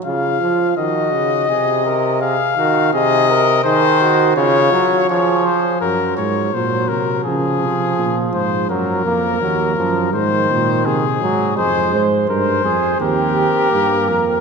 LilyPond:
<<
  \new Staff \with { instrumentName = "Trumpet" } { \time 4/4 \key des \major \tempo 4 = 83 f''4 ees''2 f''4 | ees''4 c''4 des''4 des''8 c''8 | bes'8 des''8 c''8 bes'8 aes'4. c''8 | bes'2 c''4 aes'4 |
\key f \minor c''8 r8 c''4 bes'2 | }
  \new Staff \with { instrumentName = "Flugelhorn" } { \time 4/4 \key des \major f'4 ges'4 aes'8 bes'8 aes'8 ges'8 | aes'8 bes'8 aes'8 ges'8 f'4 aes'4 | r1 | r1 |
\key f \minor aes'8 c''8 bes'8 aes'8 g'4. bes'8 | }
  \new Staff \with { instrumentName = "Trombone" } { \clef bass \time 4/4 \key des \major des8 f8 ees8 des8 c4. ees8 | c4 ees4 des8 ges8 f4 | ges4 ges4 f2 | ges8 bes8 ges8 f8 ees4. ges8 |
\key f \minor aes4. r8 c'4 bes4 | }
  \new Staff \with { instrumentName = "Tuba" } { \clef bass \time 4/4 \key des \major r1 | r1 | ges,8 aes,8 bes,8 c8 des8 c8 bes,8 aes,8 | ges,8 f,8 ees,8 ges,8 aes,8 bes,8 c8 aes,8 |
\key f \minor f,8 aes,8 g,8 f,8 ees,8 r8 g,8 f,8 | }
>>